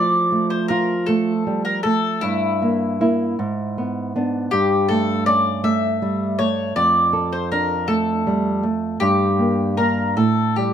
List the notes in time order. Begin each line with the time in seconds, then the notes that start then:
Already playing: F3 D5
0.32 A3
0.50 C5
0.68 F4 A#4
1.06 A3 A4
1.47 G3
1.65 A#4
1.83 A3 A4
2.21 G2 E4
2.62 A#3
3.01 A#3 E4
3.39 G#2
3.78 B3
4.16 B3 D4
4.51 G2 G4
4.89 A3 A4
5.26 C#4 D5
5.64 A3 E5
6.02 G3
6.39 A3 C#5
6.76 F2 D5
7.13 A4
7.32 C5
7.52 D4 A#4
7.88 A3 A4
8.27 G3
8.63 A3
9.00 G2 G4
9.39 A#3
9.77 A#3 D4 A#4
10.17 A2 A4
10.56 G3 G4